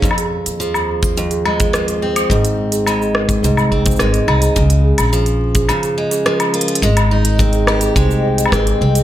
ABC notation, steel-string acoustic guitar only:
X:1
M:4/4
L:1/8
Q:1/4=106
K:Ab
V:1 name="Steel-string acoustic guitar" clef=bass
F,,2 F,2 F,, A, F, C | A,,2 A,2 A,, C A, E | D,2 F,2 D, A, F, F | A, E C G A,2 C C |]